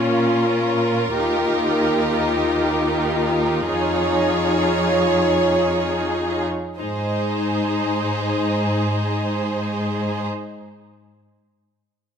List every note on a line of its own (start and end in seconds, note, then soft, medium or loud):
0.00 1.15 A#2 soft
0.00 1.11 C#4 soft
0.00 1.11 F4 soft
0.00 3.63 F4 soft
0.00 3.67 A#4 soft
1.15 3.63 D#2 soft
1.15 6.45 D#4 soft
1.15 3.63 G4 soft
3.67 6.49 F2 soft
3.67 6.45 F4 soft
3.67 6.45 G#4 soft
3.67 6.49 C#5 soft
6.78 10.26 G#2 soft
6.78 10.27 D#4 soft
6.78 10.27 G#4 soft
6.78 10.26 C5 soft